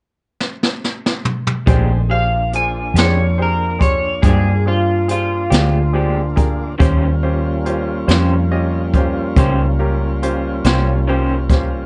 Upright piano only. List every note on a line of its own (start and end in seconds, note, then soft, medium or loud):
1.67 1.99 D4 medium
1.67 1.99 G4 medium
1.67 1.99 G#4 medium
1.67 1.99 C5 medium
2.09 2.41 D4 soft
2.09 2.41 G4 soft
2.09 2.41 G#4 soft
2.09 2.42 C5 soft
2.53 2.84 D4 soft
2.53 2.85 F4 soft
2.53 2.85 G#4 soft
2.53 2.85 C5 soft
2.96 3.27 D4 soft
2.96 3.28 G4 soft
2.96 3.28 G#4 soft
2.96 3.28 C6 soft
3.38 3.70 D4 soft
3.38 3.70 G4 soft
3.38 3.70 G#4 soft
3.38 3.70 C5 medium
3.79 4.12 D4 soft
3.79 4.12 G4 soft
3.79 4.11 G#4 soft
3.79 4.12 C6 soft
4.23 4.55 D4 soft
4.23 4.55 G#4 soft
4.23 4.55 C5 soft
4.23 4.55 G5 soft
4.66 4.98 D4 soft
4.66 4.98 G4 soft
4.66 4.98 G#4 soft
4.66 4.98 C5 soft
5.08 5.40 D4 soft
5.08 5.40 G4 soft
5.08 5.40 G#4 soft
5.08 5.41 C5 medium
5.50 5.83 D4 soft
5.50 5.82 G4 soft
5.50 5.83 G#4 soft
5.50 5.83 C5 soft
5.93 6.25 D4 soft
5.93 6.26 G4 soft
5.93 6.25 G#4 soft
5.93 6.26 C5 medium
6.36 6.68 D4 medium
6.36 6.68 G4 soft
6.36 6.68 G#4 medium
6.36 6.68 A#4 medium
6.79 7.12 C#4 medium
6.79 7.11 F4 medium
6.79 7.11 G4 medium
6.79 7.12 C5 medium
7.23 7.54 C#4 medium
7.23 7.55 F4 medium
7.23 7.55 G4 medium
7.23 7.55 C5 medium
7.65 7.98 C#4 medium
7.65 7.97 F4 soft
7.65 7.98 G4 medium
7.65 7.97 C5 medium
8.07 8.40 C#4 medium
8.07 8.39 F4 medium
8.07 8.40 G4 soft
8.07 8.40 C#5 medium
8.51 8.83 C#4 medium
8.51 8.83 F4 medium
8.51 8.83 G4 medium
8.51 8.83 D#5 medium
8.94 9.26 C#4 medium
8.94 9.26 F4 medium
8.94 9.26 G4 medium
8.94 9.26 C5 medium
9.36 9.68 C#4 medium
9.36 9.69 F4 medium
9.36 9.68 G4 soft
9.36 9.69 C5 medium
9.79 10.11 C#4 medium
9.79 10.11 F4 soft
9.79 10.11 G4 medium
9.79 10.11 A#4 medium
10.22 10.54 C#4 medium
10.22 10.54 F4 medium
10.22 10.54 G4 medium
10.22 10.54 C5 medium
10.65 10.97 C#4 medium
10.65 10.97 F4 medium
10.65 10.97 G4 medium
10.65 10.97 C#5 medium
11.08 11.40 C#4 medium
11.08 11.40 F4 medium
11.08 11.40 G4 medium
11.08 11.40 C5 medium
11.50 11.82 C#4 medium
11.50 11.82 F4 medium
11.50 11.83 G4 soft
11.50 11.82 C5 medium